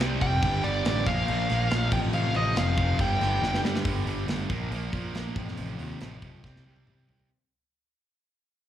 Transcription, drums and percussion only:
0.01 snare loud
0.21 kick medium
0.21 crash medium
0.42 kick loud
0.42 crash loud
0.64 crash medium
0.85 snare loud
0.85 crash medium
1.06 kick loud
1.06 crash medium
1.28 crash medium
1.50 snare soft
1.50 crash medium
1.71 snare loud
1.71 crash medium
1.92 kick loud
1.92 crash loud
2.13 crash medium
2.34 crash medium
2.56 snare loud
2.56 crash medium
2.78 kick medium
2.78 crash medium
2.99 kick medium
2.99 crash medium
3.21 snare soft
3.21 crash medium
3.44 snare medium
3.54 snare medium
3.65 snare medium
3.75 snare medium
3.85 kick loud
3.85 open hi-hat medium
4.07 open hi-hat soft
4.28 snare loud
4.28 open hi-hat medium
4.50 kick medium
4.50 open hi-hat soft
4.72 open hi-hat medium
4.93 kick medium
4.93 open hi-hat soft
5.15 snare medium
5.15 open hi-hat medium
5.36 kick medium
5.36 open hi-hat soft
5.48 snare soft
5.57 open hi-hat medium
5.79 open hi-hat soft
6.01 snare loud
6.01 open hi-hat medium
6.22 kick medium
6.22 open hi-hat soft
6.44 kick medium
6.44 snare soft
6.56 snare soft
6.76 high tom medium
6.87 mid tom medium
7.09 floor tom medium
7.19 floor tom medium

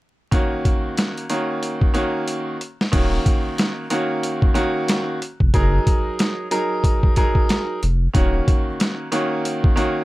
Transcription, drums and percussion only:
0.32 kick loud
0.32 closed hi-hat medium
0.65 kick medium
0.65 closed hi-hat medium
0.97 snare loud
0.97 closed hi-hat medium
1.17 closed hi-hat soft
1.30 closed hi-hat medium
1.63 closed hi-hat medium
1.81 kick loud
1.94 closed hi-hat medium
2.28 closed hi-hat medium
2.61 closed hi-hat medium
2.81 snare medium
2.93 kick loud
2.93 closed hi-hat medium
2.93 crash loud
3.26 kick loud
3.26 closed hi-hat medium
3.58 snare loud
3.58 closed hi-hat loud
3.90 closed hi-hat medium
4.23 closed hi-hat loud
4.42 kick loud
4.55 closed hi-hat medium
4.88 snare loud
4.88 closed hi-hat medium
5.22 closed hi-hat medium
5.40 kick medium
5.54 kick loud
5.54 closed hi-hat medium
5.87 kick loud
5.87 closed hi-hat medium
6.19 snare loud
6.19 closed hi-hat loud
6.51 closed hi-hat medium
6.84 kick loud
6.84 closed hi-hat medium
7.03 kick loud
7.16 kick medium
7.16 closed hi-hat medium
7.35 kick medium
7.49 snare loud
7.49 closed hi-hat medium
7.83 closed hi-hat medium
8.15 kick loud
8.15 closed hi-hat medium
8.48 kick loud
8.48 closed hi-hat medium
8.80 snare loud
8.80 closed hi-hat loud
9.12 closed hi-hat medium
9.45 closed hi-hat medium
9.64 kick loud
9.77 closed hi-hat medium

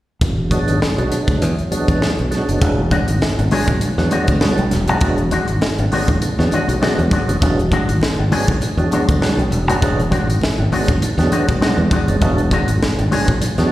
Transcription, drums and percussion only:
0.21 kick loud
0.21 closed hi-hat medium
0.51 kick medium
0.51 closed hi-hat medium
0.68 closed hi-hat medium
0.82 snare loud
0.98 closed hi-hat soft
1.12 closed hi-hat medium
1.28 kick medium
1.28 closed hi-hat soft
1.42 closed hi-hat medium
1.59 closed hi-hat soft
1.72 closed hi-hat medium
1.88 kick medium
1.88 closed hi-hat medium
2.02 snare loud
2.18 closed hi-hat soft
2.32 snare soft
2.32 closed hi-hat medium
2.49 closed hi-hat soft
2.61 kick loud
2.61 closed hi-hat medium
2.91 kick medium
2.91 closed hi-hat medium
2.91 muted conga medium
3.08 closed hi-hat medium
3.22 snare loud
3.22 high conga medium
3.39 closed hi-hat soft
3.51 open hi-hat medium
3.51 low conga medium
3.67 kick medium
3.67 closed hi-hat medium
3.67 low conga medium
3.81 closed hi-hat loud
3.81 muted conga medium
3.98 snare soft
4.11 closed hi-hat medium
4.11 muted conga medium
4.28 kick medium
4.28 closed hi-hat medium
4.41 snare loud
4.41 high conga medium
4.58 closed hi-hat soft
4.58 high conga medium
4.71 snare soft
4.71 closed hi-hat medium
4.88 closed hi-hat medium
5.01 kick loud
5.01 closed hi-hat medium
5.01 muted conga soft
5.18 closed hi-hat soft
5.31 closed hi-hat medium
5.31 muted conga medium
5.48 closed hi-hat medium
5.61 snare loud
5.61 high conga medium
5.79 closed hi-hat soft
5.92 open hi-hat medium
5.92 low conga medium
6.08 kick medium
6.08 closed hi-hat soft
6.22 closed hi-hat medium
6.22 muted conga medium
6.22 low conga medium
6.39 snare soft
6.51 closed hi-hat medium
6.51 muted conga medium
6.69 closed hi-hat medium
6.82 snare loud
6.82 high conga medium
6.98 closed hi-hat soft
6.98 high conga medium
7.11 kick loud
7.11 closed hi-hat medium
7.29 closed hi-hat medium
7.42 kick loud
7.42 closed hi-hat medium
7.59 closed hi-hat soft
7.72 kick medium
7.72 closed hi-hat medium
7.72 muted conga medium
7.89 closed hi-hat medium
8.01 snare loud
8.01 high conga medium
8.32 open hi-hat medium
8.32 low conga medium
8.48 kick medium
8.48 low conga medium
8.61 closed hi-hat medium
8.61 muted conga medium
8.79 closed hi-hat soft
8.91 closed hi-hat medium
8.91 muted conga medium
9.09 kick medium
9.09 closed hi-hat medium
9.22 snare loud
9.22 high conga medium
9.39 closed hi-hat soft
9.39 high conga medium
9.52 closed hi-hat medium
9.70 closed hi-hat medium
9.82 kick loud
9.82 closed hi-hat medium
10.00 closed hi-hat soft
10.12 kick medium
10.12 closed hi-hat medium
10.12 muted conga medium
10.30 closed hi-hat medium
10.41 snare loud
10.41 high conga medium
10.72 open hi-hat medium
10.72 low conga medium
10.88 kick medium
10.88 closed hi-hat soft
11.02 closed hi-hat medium
11.02 muted conga medium
11.02 low conga medium
11.19 snare soft
11.19 closed hi-hat soft
11.32 closed hi-hat medium
11.32 muted conga medium
11.48 kick medium
11.48 closed hi-hat medium
11.62 snare loud
11.62 high conga medium
11.79 high conga medium
11.91 kick medium
11.91 closed hi-hat medium
12.08 closed hi-hat medium
12.08 high conga medium
12.22 kick loud
12.22 closed hi-hat medium
12.22 muted conga soft
12.38 closed hi-hat soft
12.51 kick medium
12.51 closed hi-hat medium
12.51 muted conga medium
12.68 closed hi-hat medium
12.83 snare loud
12.83 high conga medium
12.99 closed hi-hat soft
13.12 open hi-hat medium
13.12 low conga medium
13.28 kick medium
13.28 closed hi-hat medium
13.28 low conga medium
13.42 closed hi-hat loud
13.42 muted conga medium
13.58 snare soft
13.58 closed hi-hat soft

